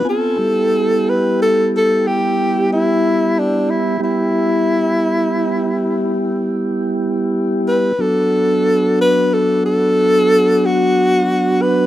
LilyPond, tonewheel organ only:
\new Staff \with { instrumentName = "Tonewheel organ" } { \time 12/8 \key e \dorian \tempo 4. = 61 <b c' eis' gis''>8 <g b e' g'>1~ <g b e' g'>4. | <g b e' g'>1. | <fis b d' fis'>1. | }